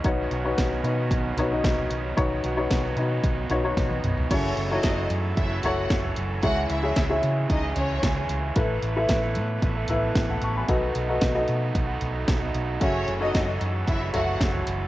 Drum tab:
CC |----------------|----------------|x---------------|----------------|
HH |x-x-x-x-x-x-x-x-|x-x-x-x-x-x-x-x-|x-x-x-x-x-x-x-x-|x-x-x-x-x-x-x-x-|
SD |----o-------o---|----o-------o---|----o-------o---|----o-------o---|
T1 |----------------|-------------o--|----------------|----------------|
T2 |----------------|--------------o-|----------------|----------------|
FT |----------o--o--|----------o----o|----------o--o--|----------o--o--|
BD |o---o---o---o---|o---o---o---o---|o---o---o---o---|o---o---o---o---|

CC |----------------|----------------|----------------|
HH |x-x-x-x-x-x-x-x-|x-x-x-x-x-x-x-x-|x-x-x-x-x-x-x-x-|
SD |----o-------o---|----o-------o---|----o-------o---|
T1 |----------------|----------------|----------------|
T2 |----------------|----------------|----------------|
FT |----------o--o--|----------o--o--|----------o--o--|
BD |o---o---o---o---|o---o---o---o---|o---o---o---o---|